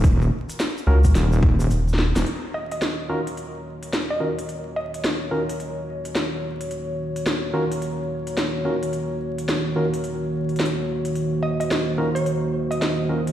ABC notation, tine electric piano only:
X:1
M:4/4
L:1/8
Q:"Swing 16ths" 1/4=108
K:Ebdor
V:1 name="Tine electric piano"
z3 [DFGB] z4 | z3 [E,DFGB] z3 [E,DFGB] | z3 [E,DFGB] z4 | z3 [E,DFGB] z3 [E,DFGB] |
z3 [E,DFGB] z4 | z3 [E,DFGB] z3 [E,DFGB] |]